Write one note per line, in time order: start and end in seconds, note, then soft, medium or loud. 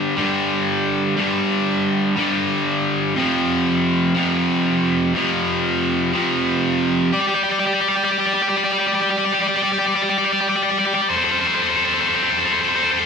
0.00 0.20 G2 soft
0.00 0.16 D3 medium
0.00 0.16 G3 medium
0.16 1.15 G2 medium
0.16 1.16 D3 medium
0.16 1.15 G3 medium
1.16 2.15 G2 medium
1.16 2.16 D3 medium
1.20 2.15 G3 medium
2.16 3.15 G2 soft
2.16 3.15 D3 medium
2.16 3.14 G3 medium
3.15 4.18 F2 medium
3.15 4.14 C3 medium
3.15 4.14 F3 medium
4.15 5.13 F2 medium
4.15 5.13 C3 medium
4.15 5.17 F3 medium
5.14 6.12 F2 medium
5.14 6.13 C3 medium
5.14 6.12 F3 medium
6.13 7.13 F2 medium
6.13 7.12 C3 medium
6.13 7.11 F3 medium
7.13 7.20 G4 soft
7.13 7.21 D5 medium
7.20 7.27 G4 soft
7.20 7.29 D5 soft
7.27 7.34 G4 soft
7.27 7.35 D5 soft
7.35 7.42 G4 soft
7.35 7.43 D5 soft
7.43 7.49 G4 soft
7.43 7.51 D5 soft
7.50 7.57 G4 soft
7.50 7.59 D5 soft
7.59 7.65 G4 soft
7.59 7.66 D5 soft
7.65 7.73 G4 soft
7.65 7.74 D5 soft
7.74 7.81 G4 soft
7.74 7.81 D5 soft
7.81 7.88 G4 soft
7.81 7.88 D5 soft
7.89 7.95 G4 soft
7.89 7.96 D5 soft
7.95 8.03 G4 soft
7.95 8.04 D5 soft
8.04 8.10 G4 soft
8.04 8.12 D5 medium
8.11 8.18 G4 soft
8.11 8.20 D5 soft
8.18 8.26 G4 soft
8.18 8.26 D5 medium
8.26 8.34 G4 soft
8.26 8.34 D5 soft
8.34 8.41 G4 soft
8.34 8.42 D5 soft
8.42 8.49 G4 soft
8.42 8.49 D5 soft
8.49 8.56 G4 soft
8.49 8.56 D5 medium
8.57 8.64 G4 soft
8.57 8.64 D5 soft
8.64 8.71 G4 soft
8.64 8.72 D5 soft
8.72 8.79 G4 soft
8.72 8.80 D5 soft
8.79 8.86 G4 soft
8.79 8.88 D5 soft
8.87 8.93 G4 soft
8.87 8.94 D5 soft
8.93 9.01 G4 soft
8.93 9.02 D5 soft
9.01 9.09 G4 soft
9.01 9.10 D5 soft
9.11 9.17 G4 medium
9.11 9.19 D5 medium
9.18 9.25 G4 soft
9.18 9.25 D5 soft
9.26 9.33 G4 soft
9.26 9.33 D5 medium
9.34 9.40 G4 soft
9.34 9.42 D5 medium
9.40 9.48 G4 soft
9.40 9.48 D5 medium
9.48 9.56 G4 soft
9.48 9.56 D5 medium
9.56 9.63 G4 medium
9.56 9.64 D5 medium
9.63 9.71 G4 soft
9.63 9.72 D5 medium
9.72 9.79 G4 medium
9.72 9.79 D5 medium
9.79 9.87 G4 soft
9.79 9.86 D5 medium
9.87 9.95 G4 medium
9.87 9.94 D5 medium
9.95 10.02 G4 soft
9.95 10.03 D5 medium
10.02 10.09 G4 medium
10.02 10.09 D5 medium
10.10 10.17 G4 soft
10.10 10.18 D5 medium
10.18 10.24 G4 medium
10.18 10.25 D5 medium
10.25 10.32 G4 soft
10.25 10.32 D5 medium
10.32 10.40 G4 medium
10.32 10.40 D5 medium
10.41 10.47 G4 soft
10.41 10.49 D5 medium
10.48 10.55 G4 soft
10.48 10.56 D5 medium
10.56 10.63 G4 soft
10.56 10.63 D5 medium
10.63 10.70 G4 soft
10.63 10.71 D5 medium
10.70 10.78 G4 soft
10.70 10.79 D5 medium
10.78 10.86 G4 soft
10.78 10.85 D5 medium
10.85 10.93 G4 soft
10.85 10.93 D5 medium
10.94 11.01 G4 soft
10.94 11.01 D5 medium
11.02 11.09 G4 soft
11.02 11.09 D5 soft
11.09 11.15 A4 medium
11.09 11.17 C5 medium
11.16 11.23 A4 soft
11.16 11.24 C5 soft
11.24 11.31 A4 soft
11.24 11.31 C5 medium
11.31 11.38 A4 soft
11.31 11.39 C5 medium
11.39 11.46 A4 soft
11.39 11.47 C5 medium
11.47 11.54 A4 soft
11.47 11.54 C5 medium
11.55 11.61 A4 soft
11.55 11.62 C5 medium
11.62 11.70 A4 soft
11.62 11.69 C5 medium
11.69 11.76 A4 medium
11.69 11.77 C5 medium
11.77 11.84 A4 soft
11.77 11.85 C5 medium
11.84 11.92 A4 medium
11.84 11.93 C5 medium
11.93 12.00 A4 soft
11.93 12.00 C5 medium
12.00 12.08 A4 soft
12.00 12.07 C5 medium
12.08 12.16 A4 soft
12.08 12.14 C5 medium
12.15 12.23 A4 soft
12.15 12.22 C5 medium
12.23 12.31 A4 soft
12.23 12.30 C5 medium
12.31 12.37 A4 soft
12.31 12.38 C5 medium
12.38 12.45 A4 soft
12.38 12.45 C5 medium
12.46 12.53 A4 medium
12.46 12.52 C5 medium
12.53 12.61 A4 soft
12.53 12.60 C5 medium
12.61 12.69 A4 soft
12.61 12.68 C5 medium
12.69 12.75 A4 soft
12.69 12.75 C5 soft
12.75 12.83 A4 soft
12.75 12.83 C5 medium
12.83 12.92 A4 soft
12.83 12.91 C5 soft
12.92 13.00 A4 soft
12.92 12.98 C5 medium
12.99 13.06 A4 soft
12.99 13.06 C5 soft